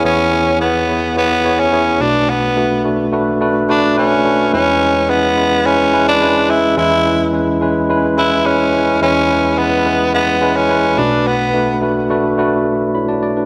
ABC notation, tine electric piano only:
X:1
M:4/4
L:1/16
Q:1/4=107
K:Emix
V:1 name="Tine electric piano"
[B,EGc]2 [B,EGc]2 [B,EGc]2 [B,EGc]2 [B,EGc]2 [B,EGc]2 [B,EGc]2 [A,DFB]2- | [A,DFB]2 [A,DFB]2 [A,DFB]2 [A,DFB]2 [A,DFB]2 [A,DFB]2 [A,DFB]2 [A,DFB]2 | [G,CEB]2 [G,CEB]2 [G,CEB]2 [G,CEB]2 [G,CEB]2 [G,CEB]2 [G,CEB]2 [G,CEB]2 | [G,CEB]2 [G,CEB]2 [G,CEB]2 [G,CEB]2 [G,CEB]2 [G,CEB]2 [G,CEB]2 [G,CEB]2 |
[G,CEB]2 [G,CEB]2 [G,CEB]2 [G,CEB]2 [G,CEB]2 [G,CEB]2 [G,CEB]2 [A,DFB]2- | [A,DFB]2 [A,DFB]2 [A,DFB]2 [A,DFB]2 [A,DFB]2 z2 [Ecb] [Fda] d [DB] |]
V:2 name="Tine electric piano" clef=bass
[E,,E,]12- [E,,E,]2 [B,,,B,,]2- | [B,,,B,,]12- [B,,,B,,]2 z2 | [E,,E,]16 | [E,,E,]16 |
[E,,E,]12- [E,,E,]2 [B,,,B,,]2- | [B,,,B,,]12- [B,,,B,,]2 z2 |]